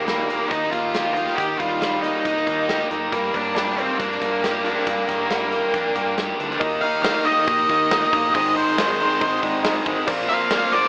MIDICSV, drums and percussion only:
0, 0, Header, 1, 2, 480
1, 0, Start_track
1, 0, Tempo, 435098
1, 1515, Time_signature, 4, 2, 24, 8
1, 12005, End_track
2, 0, Start_track
2, 0, Title_t, "Drums"
2, 84, Note_on_c, 9, 42, 68
2, 87, Note_on_c, 9, 38, 91
2, 194, Note_off_c, 9, 42, 0
2, 198, Note_off_c, 9, 38, 0
2, 328, Note_on_c, 9, 42, 53
2, 439, Note_off_c, 9, 42, 0
2, 563, Note_on_c, 9, 36, 88
2, 565, Note_on_c, 9, 42, 67
2, 673, Note_off_c, 9, 36, 0
2, 676, Note_off_c, 9, 42, 0
2, 802, Note_on_c, 9, 36, 68
2, 805, Note_on_c, 9, 42, 51
2, 912, Note_off_c, 9, 36, 0
2, 915, Note_off_c, 9, 42, 0
2, 1041, Note_on_c, 9, 42, 71
2, 1044, Note_on_c, 9, 38, 93
2, 1151, Note_off_c, 9, 42, 0
2, 1154, Note_off_c, 9, 38, 0
2, 1282, Note_on_c, 9, 42, 52
2, 1393, Note_off_c, 9, 42, 0
2, 1408, Note_on_c, 9, 38, 26
2, 1519, Note_off_c, 9, 38, 0
2, 1524, Note_on_c, 9, 36, 94
2, 1526, Note_on_c, 9, 42, 75
2, 1635, Note_off_c, 9, 36, 0
2, 1636, Note_off_c, 9, 42, 0
2, 1764, Note_on_c, 9, 36, 66
2, 1764, Note_on_c, 9, 42, 49
2, 1874, Note_off_c, 9, 36, 0
2, 1874, Note_off_c, 9, 42, 0
2, 2004, Note_on_c, 9, 42, 74
2, 2007, Note_on_c, 9, 38, 94
2, 2114, Note_off_c, 9, 42, 0
2, 2117, Note_off_c, 9, 38, 0
2, 2246, Note_on_c, 9, 42, 53
2, 2357, Note_off_c, 9, 42, 0
2, 2485, Note_on_c, 9, 36, 87
2, 2486, Note_on_c, 9, 42, 68
2, 2596, Note_off_c, 9, 36, 0
2, 2596, Note_off_c, 9, 42, 0
2, 2611, Note_on_c, 9, 38, 26
2, 2721, Note_off_c, 9, 38, 0
2, 2723, Note_on_c, 9, 42, 48
2, 2725, Note_on_c, 9, 36, 74
2, 2833, Note_off_c, 9, 42, 0
2, 2836, Note_off_c, 9, 36, 0
2, 2967, Note_on_c, 9, 42, 69
2, 2970, Note_on_c, 9, 38, 94
2, 3077, Note_off_c, 9, 42, 0
2, 3081, Note_off_c, 9, 38, 0
2, 3208, Note_on_c, 9, 42, 53
2, 3318, Note_off_c, 9, 42, 0
2, 3446, Note_on_c, 9, 42, 66
2, 3447, Note_on_c, 9, 36, 99
2, 3556, Note_off_c, 9, 42, 0
2, 3557, Note_off_c, 9, 36, 0
2, 3687, Note_on_c, 9, 36, 68
2, 3688, Note_on_c, 9, 42, 50
2, 3797, Note_off_c, 9, 36, 0
2, 3798, Note_off_c, 9, 42, 0
2, 3930, Note_on_c, 9, 42, 70
2, 3933, Note_on_c, 9, 38, 94
2, 4040, Note_off_c, 9, 42, 0
2, 4043, Note_off_c, 9, 38, 0
2, 4170, Note_on_c, 9, 42, 51
2, 4281, Note_off_c, 9, 42, 0
2, 4408, Note_on_c, 9, 42, 75
2, 4410, Note_on_c, 9, 36, 94
2, 4519, Note_off_c, 9, 42, 0
2, 4520, Note_off_c, 9, 36, 0
2, 4540, Note_on_c, 9, 38, 26
2, 4651, Note_off_c, 9, 38, 0
2, 4652, Note_on_c, 9, 36, 74
2, 4655, Note_on_c, 9, 42, 55
2, 4762, Note_off_c, 9, 36, 0
2, 4765, Note_off_c, 9, 42, 0
2, 4896, Note_on_c, 9, 42, 76
2, 4899, Note_on_c, 9, 38, 93
2, 5006, Note_off_c, 9, 42, 0
2, 5009, Note_off_c, 9, 38, 0
2, 5135, Note_on_c, 9, 42, 53
2, 5245, Note_off_c, 9, 42, 0
2, 5372, Note_on_c, 9, 36, 98
2, 5373, Note_on_c, 9, 42, 78
2, 5482, Note_off_c, 9, 36, 0
2, 5483, Note_off_c, 9, 42, 0
2, 5612, Note_on_c, 9, 36, 67
2, 5612, Note_on_c, 9, 42, 53
2, 5722, Note_off_c, 9, 42, 0
2, 5723, Note_off_c, 9, 36, 0
2, 5850, Note_on_c, 9, 42, 74
2, 5853, Note_on_c, 9, 38, 93
2, 5960, Note_off_c, 9, 42, 0
2, 5964, Note_off_c, 9, 38, 0
2, 6089, Note_on_c, 9, 42, 56
2, 6200, Note_off_c, 9, 42, 0
2, 6331, Note_on_c, 9, 42, 69
2, 6332, Note_on_c, 9, 36, 97
2, 6442, Note_off_c, 9, 36, 0
2, 6442, Note_off_c, 9, 42, 0
2, 6572, Note_on_c, 9, 36, 72
2, 6575, Note_on_c, 9, 42, 55
2, 6683, Note_off_c, 9, 36, 0
2, 6685, Note_off_c, 9, 42, 0
2, 6813, Note_on_c, 9, 42, 73
2, 6817, Note_on_c, 9, 38, 97
2, 6924, Note_off_c, 9, 42, 0
2, 6927, Note_off_c, 9, 38, 0
2, 7059, Note_on_c, 9, 42, 53
2, 7170, Note_off_c, 9, 42, 0
2, 7179, Note_on_c, 9, 38, 26
2, 7289, Note_off_c, 9, 38, 0
2, 7292, Note_on_c, 9, 36, 113
2, 7295, Note_on_c, 9, 46, 85
2, 7402, Note_off_c, 9, 36, 0
2, 7405, Note_off_c, 9, 46, 0
2, 7533, Note_on_c, 9, 46, 62
2, 7643, Note_off_c, 9, 46, 0
2, 7769, Note_on_c, 9, 46, 88
2, 7772, Note_on_c, 9, 38, 117
2, 7879, Note_off_c, 9, 46, 0
2, 7882, Note_off_c, 9, 38, 0
2, 8011, Note_on_c, 9, 46, 71
2, 8121, Note_off_c, 9, 46, 0
2, 8248, Note_on_c, 9, 46, 97
2, 8249, Note_on_c, 9, 36, 115
2, 8358, Note_off_c, 9, 46, 0
2, 8359, Note_off_c, 9, 36, 0
2, 8486, Note_on_c, 9, 46, 68
2, 8489, Note_on_c, 9, 36, 84
2, 8596, Note_off_c, 9, 46, 0
2, 8599, Note_off_c, 9, 36, 0
2, 8727, Note_on_c, 9, 46, 92
2, 8731, Note_on_c, 9, 38, 121
2, 8838, Note_off_c, 9, 46, 0
2, 8841, Note_off_c, 9, 38, 0
2, 8969, Note_on_c, 9, 36, 88
2, 8970, Note_on_c, 9, 46, 68
2, 9080, Note_off_c, 9, 36, 0
2, 9080, Note_off_c, 9, 46, 0
2, 9210, Note_on_c, 9, 36, 112
2, 9211, Note_on_c, 9, 46, 103
2, 9320, Note_off_c, 9, 36, 0
2, 9322, Note_off_c, 9, 46, 0
2, 9451, Note_on_c, 9, 46, 64
2, 9562, Note_off_c, 9, 46, 0
2, 9687, Note_on_c, 9, 46, 96
2, 9690, Note_on_c, 9, 38, 125
2, 9797, Note_off_c, 9, 46, 0
2, 9800, Note_off_c, 9, 38, 0
2, 9927, Note_on_c, 9, 46, 69
2, 10037, Note_off_c, 9, 46, 0
2, 10164, Note_on_c, 9, 46, 88
2, 10165, Note_on_c, 9, 36, 113
2, 10274, Note_off_c, 9, 46, 0
2, 10275, Note_off_c, 9, 36, 0
2, 10402, Note_on_c, 9, 46, 67
2, 10403, Note_on_c, 9, 36, 83
2, 10512, Note_off_c, 9, 46, 0
2, 10513, Note_off_c, 9, 36, 0
2, 10638, Note_on_c, 9, 46, 91
2, 10642, Note_on_c, 9, 38, 109
2, 10749, Note_off_c, 9, 46, 0
2, 10752, Note_off_c, 9, 38, 0
2, 10877, Note_on_c, 9, 46, 60
2, 10879, Note_on_c, 9, 36, 93
2, 10988, Note_off_c, 9, 46, 0
2, 10990, Note_off_c, 9, 36, 0
2, 11114, Note_on_c, 9, 49, 106
2, 11119, Note_on_c, 9, 36, 117
2, 11225, Note_off_c, 9, 49, 0
2, 11229, Note_off_c, 9, 36, 0
2, 11353, Note_on_c, 9, 46, 64
2, 11357, Note_on_c, 9, 38, 33
2, 11464, Note_off_c, 9, 46, 0
2, 11467, Note_off_c, 9, 38, 0
2, 11588, Note_on_c, 9, 46, 86
2, 11591, Note_on_c, 9, 38, 117
2, 11698, Note_off_c, 9, 46, 0
2, 11702, Note_off_c, 9, 38, 0
2, 11829, Note_on_c, 9, 46, 68
2, 11940, Note_off_c, 9, 46, 0
2, 11957, Note_on_c, 9, 38, 32
2, 12005, Note_off_c, 9, 38, 0
2, 12005, End_track
0, 0, End_of_file